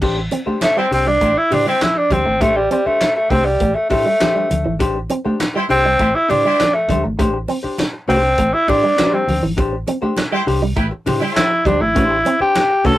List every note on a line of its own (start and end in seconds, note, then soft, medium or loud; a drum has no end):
0.01 0.27 A1 medium
0.01 0.19 D4 medium
0.01 0.19 G4 medium
0.01 0.20 C5 medium
0.01 kick medium
0.01 crash medium
0.01 muted conga soft
0.17 muted clean electric guitar stroke soft
0.31 0.40 C4 medium
0.31 muted hollow-body jazz guitar stroke soft
0.31 closed hi-hat medium
0.31 muted conga medium
0.46 0.55 A3 medium
0.46 0.61 D4 soft
0.46 0.60 G4 medium
0.46 0.60 C5 medium
0.46 muted fingered electric bass stroke soft
0.61 0.80 A3 loud
0.61 snare loud
0.61 clap medium
0.61 closed hi-hat medium
0.61 high conga medium
0.77 0.85 G3 medium
0.77 0.92 C4 medium
0.77 0.87 E4 medium
0.77 0.87 G4 medium
0.77 0.86 C5 loud
0.77 muted hollow-body jazz guitar stroke soft
0.91 1.17 C2 medium
0.91 1.09 C4 loud
0.91 1.08 D4 medium
0.91 1.06 G4 medium
0.91 1.05 C5 medium
0.91 muted clean electric guitar stroke soft
0.91 open hi-hat medium
1.06 1.15 G3 medium
1.06 1.39 D4 loud
1.06 muted hollow-body jazz guitar stroke soft
1.21 1.34 A1 loud
1.21 1.30 A3 loud
1.21 1.32 E4 medium
1.21 1.32 G4 medium
1.21 1.32 C5 medium
1.21 kick medium
1.21 closed hi-hat medium
1.21 muted conga soft
1.36 1.55 E4 loud
1.36 muted hollow-body jazz guitar stroke soft
1.50 1.64 A2 loud
1.50 1.68 D4 medium
1.50 1.67 D4 medium
1.50 1.66 G4 medium
1.50 1.64 C5 medium
1.50 muted clean electric guitar stroke soft
1.50 open hi-hat medium
1.50 muted conga medium
1.50 low conga medium
1.66 1.75 G3 medium
1.66 1.84 C4 medium
1.66 1.86 E4 medium
1.66 1.86 G4 medium
1.66 1.86 C5 loud
1.66 muted hollow-body jazz guitar stroke medium
1.81 1.99 E4 medium
1.81 muted hollow-body jazz guitar stroke soft
1.81 muted clean electric guitar stroke soft
1.81 snare loud
1.81 clap medium
1.81 closed hi-hat medium
1.81 high conga medium
1.95 2.13 D4 medium
1.95 muted hollow-body jazz guitar stroke soft
2.10 2.23 D2 medium
2.10 2.20 G3 medium
2.10 2.43 C4 medium
2.10 2.28 D4 medium
2.10 2.26 G4 medium
2.10 2.24 C5 medium
2.10 kick medium
2.10 closed hi-hat medium
2.10 high conga medium
2.26 2.41 G#1 medium
2.26 2.35 A3 medium
2.26 muted hollow-body jazz guitar stroke soft
2.41 2.66 A1 medium
2.41 2.49 A3 medium
2.41 2.58 A3 medium
2.41 2.58 D4 medium
2.41 2.59 G4 medium
2.41 2.59 C5 loud
2.41 kick loud
2.41 closed hi-hat medium
2.41 muted conga medium
2.56 2.71 G3 medium
2.56 muted clean electric guitar stroke soft
2.71 2.88 G3 medium
2.71 2.80 C4 medium
2.71 muted hollow-body jazz guitar stroke soft
2.71 closed hi-hat medium
2.71 muted conga soft
2.86 3.15 A3 medium
2.86 3.00 D4 soft
2.86 3.00 G4 medium
2.86 2.99 C5 medium
2.86 muted fingered electric bass stroke soft
3.01 snare medium
3.01 clap medium
3.01 closed hi-hat medium
3.01 high conga medium
3.16 3.32 A3 medium
3.16 muted hollow-body jazz guitar stroke medium
3.30 3.56 C2 medium
3.30 3.39 A3 medium
3.30 3.47 C4 medium
3.30 3.48 D4 medium
3.30 3.46 G4 medium
3.30 3.45 C5 medium
3.30 kick medium
3.30 open hi-hat medium
3.45 3.77 G3 medium
3.45 muted hollow-body jazz guitar stroke soft
3.60 3.73 A1 loud
3.60 3.69 A3 medium
3.60 kick medium
3.60 closed hi-hat medium
3.60 muted conga soft
3.75 3.89 A3 medium
3.75 muted hollow-body jazz guitar stroke medium
3.90 4.03 A2 loud
3.90 4.76 A3 medium
3.90 4.07 D4 medium
3.90 4.05 G4 medium
3.90 4.04 C5 medium
3.90 muted clean electric guitar stroke soft
3.90 kick medium
3.90 open hi-hat medium
3.90 muted conga soft
4.05 4.14 G3 medium
4.05 muted hollow-body jazz guitar stroke medium
4.20 4.48 D4 medium
4.20 4.48 G4 medium
4.20 4.49 C5 loud
4.20 snare loud
4.20 clap medium
4.20 closed hi-hat medium
4.20 high conga medium
4.35 4.44 G3 medium
4.50 4.63 D2 medium
4.50 muted hollow-body jazz guitar stroke soft
4.50 muted clean electric guitar stroke soft
4.50 closed hi-hat medium
4.50 high conga medium
4.64 4.80 G#1 medium
4.64 4.74 E3 medium
4.64 muted hollow-body jazz guitar stroke soft
4.79 5.06 A1 loud
4.79 4.97 D4 medium
4.79 4.97 G4 loud
4.79 4.98 C5 medium
4.79 kick loud
4.79 closed hi-hat medium
4.79 muted conga soft
4.96 muted clean electric guitar stroke soft
5.09 5.19 C4 medium
5.09 muted hollow-body jazz guitar stroke soft
5.09 closed hi-hat medium
5.09 muted conga medium
5.25 5.34 A3 medium
5.25 5.39 D4 soft
5.25 5.39 G4 soft
5.25 5.38 C5 medium
5.25 muted fingered electric bass stroke soft
5.40 snare loud
5.40 clap medium
5.40 closed hi-hat medium
5.40 high conga medium
5.54 5.64 G3 medium
5.54 5.65 E4 loud
5.54 5.65 G4 medium
5.54 5.65 C5 loud
5.54 muted hollow-body jazz guitar stroke medium
5.69 5.95 C2 medium
5.69 6.17 C4 loud
5.69 5.87 D4 medium
5.69 5.84 G4 medium
5.69 5.83 C5 medium
5.69 muted clean electric guitar stroke soft
5.69 open hi-hat medium
5.84 5.93 G3 medium
5.84 muted hollow-body jazz guitar stroke soft
5.99 6.12 A1 loud
5.99 6.08 A3 medium
5.99 6.09 E4 medium
5.99 6.09 G4 medium
5.99 6.09 C5 medium
5.99 kick medium
5.99 closed hi-hat medium
6.14 6.31 E4 medium
6.14 muted hollow-body jazz guitar stroke soft
6.28 6.43 A2 loud
6.28 6.46 D4 medium
6.28 6.76 D4 loud
6.28 6.44 G4 medium
6.28 6.43 C5 medium
6.28 muted clean electric guitar stroke soft
6.28 open hi-hat medium
6.28 muted conga soft
6.28 low conga medium
6.44 6.53 G3 medium
6.44 6.64 E4 medium
6.44 6.65 G4 medium
6.44 6.65 C5 medium
6.44 muted hollow-body jazz guitar stroke medium
6.59 muted hollow-body jazz guitar stroke soft
6.59 muted clean electric guitar stroke soft
6.59 snare loud
6.59 clap medium
6.59 closed hi-hat loud
6.59 high conga medium
6.74 7.04 A3 medium
6.74 muted hollow-body jazz guitar stroke soft
6.88 7.01 D2 loud
6.88 6.98 G3 medium
6.88 7.06 D4 medium
6.88 7.04 G4 medium
6.88 7.03 C5 medium
6.88 kick medium
6.88 closed hi-hat medium
6.88 high conga medium
7.04 7.19 G#1 medium
7.04 7.12 A3 medium
7.04 muted hollow-body jazz guitar stroke soft
7.19 7.44 A1 medium
7.19 7.27 A3 medium
7.19 7.36 D4 medium
7.19 7.36 G4 medium
7.19 7.37 C5 medium
7.19 kick loud
7.19 closed hi-hat medium
7.19 muted conga soft
7.34 muted clean electric guitar stroke soft
7.48 7.57 C4 medium
7.48 muted hollow-body jazz guitar stroke soft
7.48 open hi-hat medium
7.48 muted conga soft
7.63 7.77 D4 soft
7.63 7.77 G4 soft
7.63 7.77 C5 medium
7.63 muted fingered electric bass stroke soft
7.78 snare loud
7.78 clap medium
7.78 closed hi-hat medium
7.78 high conga medium
7.93 muted hollow-body jazz guitar stroke soft
8.08 8.34 C2 medium
8.08 8.17 A3 medium
8.08 8.55 C4 loud
8.08 8.28 D4 medium
8.08 8.23 G4 medium
8.08 8.22 C5 loud
8.08 open hi-hat medium
8.23 muted hollow-body jazz guitar stroke soft
8.38 8.51 A1 loud
8.38 8.47 A3 medium
8.38 kick medium
8.38 closed hi-hat medium
8.38 muted conga soft
8.53 8.70 E4 medium
8.53 muted hollow-body jazz guitar stroke soft
8.68 8.81 A2 loud
8.68 8.85 D4 medium
8.68 9.15 D4 loud
8.68 8.82 G4 loud
8.68 8.81 C5 medium
8.68 muted clean electric guitar stroke soft
8.68 kick medium
8.68 open hi-hat medium
8.68 muted conga medium
8.82 8.92 G3 medium
8.82 muted hollow-body jazz guitar stroke medium
8.97 9.09 C#4 medium
8.97 9.10 F#4 medium
8.97 9.09 B4 loud
8.97 snare loud
8.97 clap medium
8.97 closed hi-hat medium
8.97 high conga medium
9.09 9.25 D4 medium
9.09 9.25 G4 medium
9.09 9.26 C5 loud
9.14 9.22 G3 medium
9.14 9.43 C4 medium
9.27 9.40 D2 loud
9.27 muted hollow-body jazz guitar stroke soft
9.27 muted clean electric guitar stroke soft
9.27 open hi-hat medium
9.27 high conga medium
9.42 9.58 G#1 medium
9.42 9.51 E3 medium
9.42 muted hollow-body jazz guitar stroke soft
9.42 high conga medium
9.57 9.83 A1 medium
9.57 9.74 D4 medium
9.57 9.75 G4 medium
9.57 9.75 C5 medium
9.57 kick loud
9.57 closed hi-hat medium
9.57 muted conga medium
9.73 muted clean electric guitar stroke medium
9.87 9.96 C4 medium
9.87 muted hollow-body jazz guitar stroke soft
9.87 closed hi-hat medium
9.87 muted conga medium
10.02 10.11 A3 medium
10.02 10.16 D4 medium
10.02 10.16 G4 medium
10.02 10.15 C5 medium
10.02 muted fingered electric bass stroke soft
10.17 snare loud
10.17 clap medium
10.17 closed hi-hat medium
10.17 high conga medium
10.31 10.41 G3 medium
10.31 10.41 E4 medium
10.31 10.42 G4 loud
10.31 10.42 C5 loud
10.31 muted hollow-body jazz guitar stroke medium
10.46 10.72 C2 medium
10.46 10.64 D4 medium
10.46 10.62 G4 medium
10.46 10.61 C5 medium
10.46 muted clean electric guitar stroke soft
10.46 open hi-hat medium
10.62 10.71 G3 medium
10.62 muted hollow-body jazz guitar stroke soft
10.76 10.89 A1 loud
10.76 10.85 A3 medium
10.76 10.86 E4 medium
10.76 10.86 G4 medium
10.76 10.86 B4 medium
10.76 kick medium
10.76 closed hi-hat medium
10.91 muted hollow-body jazz guitar stroke medium
11.06 11.19 A2 loud
11.06 11.23 D4 medium
11.06 11.21 G4 medium
11.06 11.20 C5 medium
11.06 muted clean electric guitar stroke soft
11.06 open hi-hat medium
11.06 muted conga medium
11.06 low conga medium
11.20 11.30 G3 medium
11.20 11.46 E4 loud
11.20 11.46 G4 medium
11.20 11.46 C5 loud
11.20 muted hollow-body jazz guitar stroke soft
11.36 11.68 E4 medium
11.36 muted clean electric guitar stroke soft
11.36 muted hollow-body jazz guitar stroke soft
11.36 snare loud
11.36 clap medium
11.36 closed hi-hat medium
11.36 high conga medium
11.51 muted hollow-body jazz guitar stroke soft
11.65 11.78 D2 medium
11.65 11.74 G3 medium
11.65 11.83 D4 medium
11.65 11.81 G4 medium
11.65 11.80 C5 medium
11.65 kick medium
11.65 closed hi-hat medium
11.65 high conga medium
11.80 11.96 G#1 medium
11.80 11.89 A3 medium
11.80 12.41 E4 loud
11.80 muted hollow-body jazz guitar stroke soft
11.95 12.21 A1 medium
11.95 12.04 A3 medium
11.95 12.15 D4 medium
11.95 12.16 G4 medium
11.95 12.16 C5 medium
11.95 kick loud
11.95 closed hi-hat medium
11.95 muted conga medium
12.11 muted clean electric guitar stroke soft
12.25 12.34 C4 medium
12.25 muted hollow-body jazz guitar stroke soft
12.25 closed hi-hat medium
12.25 muted conga soft
12.40 12.55 D4 medium
12.40 12.54 G4 medium
12.40 12.87 G4 loud
12.40 12.54 C5 medium
12.40 muted fingered electric bass stroke soft
12.55 snare loud
12.55 clap medium
12.55 closed hi-hat medium
12.55 high conga medium
12.70 muted hollow-body jazz guitar stroke soft
12.84 12.98 C2 medium
12.84 12.94 A3 medium
12.84 12.98 D4 medium
12.84 12.98 G4 medium
12.84 12.98 A4 loud
12.84 12.98 C5 medium
12.84 kick loud
12.84 open hi-hat medium